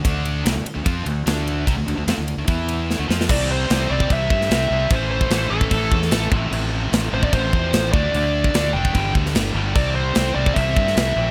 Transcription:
<<
  \new Staff \with { instrumentName = "Lead electric guitar" } { \time 4/4 \key d \minor \tempo 4 = 149 r1 | r1 | d''8 c''4 d''8 e''2 | c''8 c''4 a'2 r8 |
r4. c''16 d''16 c''4. d''8~ | d''4. g''4 r4. | d''8 c''4 d''8 e''2 | }
  \new Staff \with { instrumentName = "Distorted electric guitar" } { \clef bass \time 4/4 \key d \minor <d a d'>4 <c g>16 <d a>16 r16 <d a>16 <f c' f'>8 <d a>8 <d a d'>4 | <c g>16 <d a>16 <d a>16 <d a>16 <f c'>16 <d a>8 <d a>16 <e b e'>4~ <e b e'>16 <d a>16 <f c' f'>8 | <c g c'>4 <c g c'>8 <c g c'>8 <c g c'>4 <c g c'>8 <c g c'>8 | <a, e a>4 <a, e a>8 <a, e a>8 <a, e a>4 <a, e a>8 <f, c f>8 |
<f, c f>4 <f, c f>8 <f, c f>8 <f, c f>4 <f, c f>8 <d a d'>8 | <d a d'>4 <d a d'>8 <d a d'>8 <g, d g>4 <g, d g>8 <g, d g>8 | <c g c'>4 <c g c'>8 <c g c'>8 <c g c'>4 <c g c'>8 <c g c'>8 | }
  \new Staff \with { instrumentName = "Fingered electric bass" } { \clef bass \time 4/4 \key d \minor d,4 c,16 d,16 r16 d,16 f,8 d,8 d,4 | c,16 d,16 d,16 d,16 f,16 d,8 d,16 e,4~ e,16 d,16 f,8 | c,4 c,8 c,8 c,8 g,8 c,8 c,8 | a,,4 a,,8 a,,8 a,,8 e,8 a,,8 a,,8 |
a,,4 a,,8 a,,8 a,,8 e,8 a,,8 d,8 | d,4 d,8 f,,8 g,,8 d,8 g,,8 g,,8 | c,4 c,8 c,8 c,8 g,8 c,8 bes,,8 | }
  \new DrumStaff \with { instrumentName = "Drums" } \drummode { \time 4/4 <bd cymr>8 cymr8 <cymr sn>8 cymr8 <bd cymr>8 cymr8 <cymr sn>8 cymr8 | <bd cymr>8 cymr8 <cymr sn>8 cymr8 <bd cymr>8 cymr8 sn8 sn16 sn16 | <cymc bd>4 <cymc sn>8. bd16 <cymc bd>8 bd16 sn16 <cymc sn>4 | <cymc bd>8. bd16 <cymc sn>8. bd16 <cymc bd>8 bd16 sn16 <cymc sn>8 bd8 |
cymc4 <cymc sn>8. bd16 <cymc bd>8 bd8 <cymc sn>8 bd8 | cymc8. bd16 <cymc sn>8. bd16 <cymc bd>8 bd16 sn16 <cymc sn>4 | <cymc bd>4 <cymc sn>8. bd16 <cymc bd>8 bd16 sn16 <cymc sn>4 | }
>>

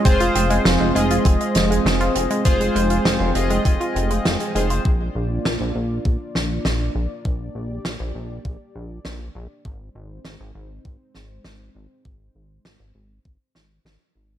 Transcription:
<<
  \new Staff \with { instrumentName = "Analog polysynth" } { \time 4/4 \key f \minor \tempo 4 = 100 <f' aes' c''>4. <f' aes' ees''>2~ <f' aes' ees''>8 | <f' aes' c''>4. <f' aes' ees''>2 <f' aes' c''>8 | r1 | r1 |
r1 | r1 | }
  \new Staff \with { instrumentName = "Analog synth pad" } { \time 4/4 \key f \minor << { <aes c' c''>1~ | <aes c' c''>1 | <bes d' d''>1~ | <bes d' d''>1 |
<aes c' c''>1~ | <aes c' c''>1 | } \\ { f'1 | g''1 | f'1 | g'1 |
ees'1~ | ees'1 | } >> }
  \new Staff \with { instrumentName = "Synth arpeggio sound" } { \clef bass \time 4/4 \key f \minor c'16 f'16 c'16 aes16 f16 aes16 aes16 f'16 c'16 aes16 f16 aes16 c'16 f'16 c'16 aes16 | f16 aes16 aes16 f'16 c'16 aes16 f16 aes16 c'16 f'16 c'16 aes16 f16 aes16 aes16 f'16 | r1 | r1 |
r1 | r1 | }
  \new Staff \with { instrumentName = "Analog synth bass" } { \clef bass \time 4/4 \key f \minor f,,8 f,,8 f,,16 f,,16 f,,8 f,,16 r16 f,,8 f,,8 f,,16 r16 | f,,8 f,,8 f,,16 f,,16 f,,8 f,,16 r16 f,,8 f,,16 r16 f,,8 | bes,,8 bes,,8 bes,,16 bes,,16 bes,,8 bes,,16 r16 bes,,8 bes,,8 bes,,16 r16 | bes,,8 bes,,8 bes,,16 bes,,16 bes,,8 bes,,16 r16 bes,,8 bes,,8 bes,,16 r16 |
aes,,8 aes,,8 aes,,16 aes,,16 aes,,8 aes,,16 r16 aes,,8 aes,,8 aes,,16 r16 | aes,,8 aes,,8 aes,,16 aes,,16 aes,,8 aes,,16 r16 aes,,8 aes,,16 r16 aes,,8 | }
  \new DrumStaff \with { instrumentName = "Drums" } \drummode { \time 4/4 <hh bd>16 hh16 hh16 hh16 <hh sn>8 hh16 hh16 <hh bd>16 hh16 <hh sn>16 hh16 <hh sn>16 hh16 hh16 hh16 | <hh bd>16 hh16 hh16 hh16 <hh sn>8 hh16 hh16 <hh bd>16 hh16 hh16 hh16 <hh sn>16 hh16 hh16 hh16 | bd4 sn4 bd8 sn8 sn4 | bd4 sn4 bd4 sn4 |
bd4 sn4 bd8 sn8 sn4 | bd4 sn4 bd8 sn8 sn4 | }
>>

